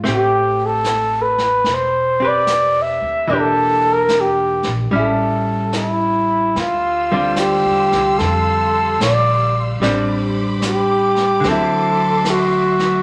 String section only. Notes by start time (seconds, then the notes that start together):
6.58 G4 F5 C6 E6
9.77 C5 B5 D6
11.41 F#4 E5 C6